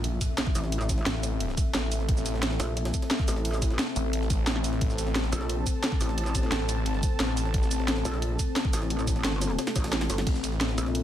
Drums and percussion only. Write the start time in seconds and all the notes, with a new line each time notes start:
0.04 closed hi-hat, ride
0.21 kick, closed hi-hat, ride, shaker
0.38 snare, closed hi-hat, ride
0.47 kick
0.55 open hi-hat, ride, shaker
0.64 snare
0.72 closed hi-hat, ride
0.81 snare, shaker
0.89 kick, snare, closed hi-hat, ride, shaker
0.98 snare
1.06 snare, closed hi-hat, ride
1.23 snare, closed hi-hat, ride, shaker
1.40 closed hi-hat, ride
1.49 snare
1.57 kick, closed hi-hat, ride, shaker
1.74 snare, closed hi-hat, ride
1.92 open hi-hat, ride, shaker
2.00 snare
2.09 kick, closed hi-hat, ride
2.17 snare, shaker
2.26 closed hi-hat, ride, shaker
2.34 snare
2.43 snare, closed hi-hat, ride
2.51 snare
2.60 snare, closed hi-hat, ride, shaker
2.77 snare, closed hi-hat, ride
2.85 snare, ride
2.94 kick, closed hi-hat, shaker
3.02 snare, ride
3.11 snare, closed hi-hat, ride
3.19 kick, snare
3.28 snare, open hi-hat, ride, shaker
3.36 snare
3.45 closed hi-hat, ride
3.54 snare, shaker
3.62 kick, snare, closed hi-hat, ride, shaker
3.71 snare
3.79 snare, closed hi-hat, ride
3.96 closed hi-hat, ride, shaker
4.13 closed hi-hat, ride
4.22 snare
4.30 kick, closed hi-hat, ride, shaker
4.47 snare, closed hi-hat, ride
4.56 snare
4.64 open hi-hat, ride, shaker
4.73 snare
4.81 kick, closed hi-hat, ride
4.90 snare, shaker
4.98 closed hi-hat, ride, shaker
5.07 snare
5.15 snare, closed hi-hat, ride
5.24 snare
5.32 closed hi-hat, ride, shaker
5.41 snare
5.49 closed hi-hat, ride
5.66 kick, closed hi-hat, ride, shaker
5.84 snare, closed hi-hat, ride
5.92 kick
6.01 open hi-hat, ride, shaker
6.09 snare
6.18 closed hi-hat, ride
6.26 snare, shaker
6.35 kick, snare, closed hi-hat, ride, shaker
6.43 snare
6.52 snare, closed hi-hat, ride
6.69 snare, closed hi-hat, ride, shaker
6.86 closed hi-hat, ride
6.94 snare
7.03 kick, closed hi-hat, ride, shaker
7.20 snare, closed hi-hat, ride
7.37 open hi-hat, ride, shaker
7.46 snare
7.54 kick, closed hi-hat, ride
7.63 snare, shaker
7.71 closed hi-hat, ride, shaker
7.80 snare
7.88 snare, closed hi-hat, ride
7.97 snare
8.05 snare, closed hi-hat, ride, shaker
8.14 snare
8.22 closed hi-hat, ride
8.39 kick, closed hi-hat, ride, shaker
8.56 snare, closed hi-hat, ride
8.65 kick
8.73 snare, open hi-hat, ride, shaker
8.82 snare
8.90 snare, closed hi-hat, ride
8.99 snare, shaker
9.07 kick, snare, closed hi-hat, ride, shaker
9.16 snare
9.24 snare, closed hi-hat, ride
9.41 snare, closed hi-hat, ride, shaker
9.50 snare
9.59 snare, closed hi-hat, ride
9.67 snare, ride, shaker
9.76 kick, snare, closed hi-hat, ride, shaker
9.84 snare, ride
9.93 snare, closed hi-hat, ride
10.01 snare, ride, shaker
10.10 snare, open hi-hat, ride, shaker
10.18 snare, ride
10.27 kick, closed hi-hat, crash, ride
10.35 snare, shaker
10.44 closed hi-hat, ride, shaker
10.52 snare
10.61 snare, closed hi-hat, ride
10.69 snare
10.78 closed hi-hat, ride, shaker
10.86 snare
10.95 closed hi-hat, ride